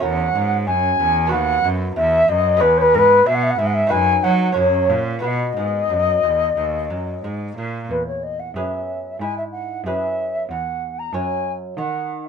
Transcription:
0.00 0.34 E2 medium
0.00 0.32 E2 medium
0.00 1.26 C#4 medium
0.00 1.26 F#4 medium
0.00 1.27 A#4 medium
0.00 0.66 F#5 loud
0.35 0.68 G#2 medium
0.35 0.64 G#2 medium
0.66 0.99 F#2 medium
0.66 0.96 F#2 medium
0.66 1.30 G#5 loud
0.99 1.33 E2 medium
0.99 1.29 E2 medium
1.27 2.54 B3 medium
1.27 2.55 F#4 medium
1.27 2.56 B4 medium
1.27 1.66 F#5 loud
1.32 1.63 D#2 medium
1.32 1.61 D#2 medium
1.64 1.95 F#2 medium
1.64 1.93 F#2 medium
1.95 2.28 E2 medium
1.95 2.25 E2 medium
1.95 2.30 E5 loud
2.28 2.57 F#2 medium
2.28 2.62 F#2 medium
2.28 2.62 D#5 loud
2.57 3.85 B3 medium
2.57 3.86 G#4 medium
2.57 3.87 B4 medium
2.57 2.78 B4 loud
2.61 2.90 E2 medium
2.61 2.96 E2 medium
2.77 2.95 B4 loud
2.77 2.82 C#5 loud
2.94 3.26 G#2 medium
2.94 3.23 G#2 medium
2.94 2.99 A#4 loud
2.94 3.27 B4 loud
3.26 3.55 B2 medium
3.26 3.58 B2 medium
3.26 3.35 E5 medium
3.34 3.44 F#5 medium
3.42 3.51 E5 medium
3.49 3.59 F#5 medium
3.58 3.88 G#2 medium
3.58 3.91 G#2 medium
3.58 3.67 E5 medium
3.66 3.75 F#5 medium
3.73 3.92 E5 loud
3.87 4.52 D#4 medium
3.87 4.53 F#4 medium
3.87 4.54 B4 medium
3.87 4.24 G#5 loud
3.91 4.23 F#2 medium
3.91 4.21 F#2 medium
4.23 4.53 F#3 medium
4.23 4.56 F#3 medium
4.23 4.56 F#5 medium
4.52 5.18 C#4 medium
4.52 5.19 F#4 medium
4.52 5.20 A#4 medium
4.52 4.98 C#5 medium
4.57 4.91 F#2 medium
4.57 4.86 F#2 medium
4.89 5.23 A#2 medium
4.89 5.20 A#2 medium
5.19 7.84 B3 soft
5.19 7.84 F#4 medium
5.19 7.85 B4 soft
5.19 5.28 F#5 medium
5.24 5.56 B2 medium
5.24 5.53 B2 medium
5.24 7.53 D#5 loud
5.56 5.89 G#2 medium
5.56 5.87 G#2 medium
5.90 6.23 F#2 medium
5.90 6.20 F#2 soft
6.23 6.54 E2 soft
6.23 6.56 E2 medium
6.57 6.91 D#2 medium
6.57 6.87 D#2 medium
6.90 7.22 F#2 medium
6.90 7.20 F#2 medium
7.23 7.56 G#2 medium
7.23 7.54 G#2 soft
7.56 7.89 A#2 medium
7.56 7.87 A#2 soft
7.89 8.51 E2 medium
7.89 8.51 E2 soft
7.89 8.05 B4 medium
8.07 8.24 C#5 medium
8.22 8.40 D#5 medium
8.39 8.53 F#5 medium
8.54 9.16 F#2 medium
8.54 9.17 F#2 soft
8.54 9.17 B3 soft
8.54 9.17 G#4 soft
8.54 9.17 B4 soft
8.54 9.18 E5 medium
9.19 9.81 G#2 medium
9.19 9.81 G#2 soft
9.19 10.24 E4 soft
9.19 9.36 G#5 medium
9.37 9.43 E5 medium
9.51 9.84 F#5 medium
9.84 10.45 F#2 medium
9.84 10.46 F#2 soft
9.84 10.46 B3 soft
9.84 10.46 G#4 soft
9.84 10.46 B4 soft
9.84 10.48 E5 medium
10.49 11.09 E2 medium
10.49 11.10 E2 soft
10.49 11.00 F#5 medium
10.98 11.14 A#5 medium
11.13 11.73 F#2 medium
11.13 11.74 F#2 soft
11.13 11.74 F#4 soft
11.13 11.74 C#5 soft
11.13 11.52 G#5 medium
11.77 12.29 D#3 medium
11.77 12.29 D#3 soft
11.77 12.25 F#5 medium

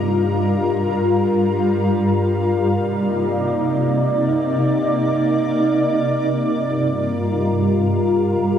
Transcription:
0.00 2.51 G2 medium
0.00 2.51 G3 medium
0.00 2.51 F4 medium
0.00 2.51 A#4 medium
2.55 6.35 C3 medium
2.55 6.35 A#3 medium
2.55 6.35 D#4 medium
2.55 6.35 D5 medium
6.39 8.59 G2 medium
6.39 8.59 G3 medium
6.39 8.59 F4 medium
6.39 8.59 A#4 medium

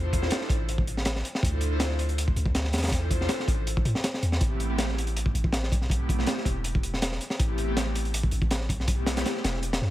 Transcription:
0.00 0.30 E2 medium
0.13 kick loud
0.13 closed hi-hat medium
0.22 snare soft
0.30 snare loud
0.30 closed hi-hat medium
0.41 snare soft
0.50 1.23 A1 medium
0.50 kick loud
0.50 closed hi-hat medium
0.69 closed hi-hat medium
0.78 kick loud
0.87 closed hi-hat medium
0.97 snare soft
1.05 snare loud
1.05 closed hi-hat medium
1.16 snare soft
1.25 closed hi-hat medium
1.35 snare medium
1.43 2.35 D2 loud
1.43 kick loud
1.43 closed hi-hat medium
1.61 closed hi-hat medium
1.80 snare loud
1.80 closed hi-hat medium
1.91 snare soft
1.99 closed hi-hat medium
2.09 closed hi-hat soft
2.18 closed hi-hat medium
2.28 kick medium
2.36 2.75 D2 medium
2.36 closed hi-hat medium
2.46 kick loud
2.55 snare loud
2.55 closed hi-hat medium
2.64 snare medium
2.73 3.28 E2 medium
2.73 snare medium
2.73 closed hi-hat medium
2.78 snare medium
2.78 closed hi-hat medium
2.83 snare medium
2.83 closed hi-hat medium
2.87 snare medium
2.87 closed hi-hat medium
2.91 kick medium
2.91 closed hi-hat medium
3.11 kick loud
3.11 closed hi-hat medium
3.21 snare soft
3.29 snare loud
3.29 closed hi-hat medium
3.40 snare soft
3.48 3.85 A1 medium
3.48 kick medium
3.48 closed hi-hat medium
3.67 closed hi-hat medium
3.77 kick loud
3.85 3.94 A2 loud
3.85 closed hi-hat medium
3.95 snare medium
4.04 snare loud
4.04 closed hi-hat medium
4.14 snare medium
4.23 4.39 E2 medium
4.23 closed hi-hat medium
4.32 snare medium
4.41 5.33 A1 loud
4.41 kick loud
4.41 closed hi-hat medium
4.60 closed hi-hat medium
4.78 snare loud
4.78 closed hi-hat medium
4.89 snare soft
4.98 closed hi-hat medium
5.07 closed hi-hat soft
5.17 closed hi-hat medium
5.26 kick medium
5.34 5.73 A1 medium
5.34 closed hi-hat medium
5.44 kick medium
5.53 snare loud
5.53 closed hi-hat medium
5.63 snare medium
5.72 6.26 B1 medium
5.72 kick loud
5.72 closed hi-hat medium
5.81 snare soft
5.90 kick loud
5.90 closed hi-hat medium
6.09 kick loud
6.09 closed hi-hat medium
6.19 snare soft
6.27 snare loud
6.27 closed hi-hat medium
6.38 snare soft
6.45 7.19 E1 medium
6.45 kick medium
6.45 closed hi-hat medium
6.64 closed hi-hat medium
6.75 kick medium
6.83 closed hi-hat medium
6.94 snare soft
7.02 snare loud
7.02 closed hi-hat medium
7.12 snare medium
7.21 closed hi-hat medium
7.30 snare medium
7.40 8.31 A1 loud
7.40 kick loud
7.40 closed hi-hat medium
7.58 closed hi-hat medium
7.77 snare loud
7.77 closed hi-hat medium
7.86 snare soft
7.95 closed hi-hat medium
8.05 closed hi-hat soft
8.14 closed hi-hat medium
8.23 kick medium
8.31 8.71 A1 medium
8.31 closed hi-hat medium
8.42 kick loud
8.51 snare loud
8.51 closed hi-hat medium
8.61 snare soft
8.69 9.24 B1 medium
8.69 kick medium
8.69 closed hi-hat medium
8.80 snare soft
8.88 kick loud
8.88 closed hi-hat medium
9.06 snare loud
9.06 closed hi-hat medium
9.17 snare loud
9.17 closed hi-hat medium
9.26 snare loud
9.26 closed hi-hat medium
9.35 snare soft
9.44 9.81 E1 medium
9.44 snare loud
9.44 closed hi-hat medium
9.55 snare soft
9.63 closed hi-hat medium
9.73 snare loud
9.73 closed hi-hat medium
9.82 9.90 F#2 medium
9.82 snare soft

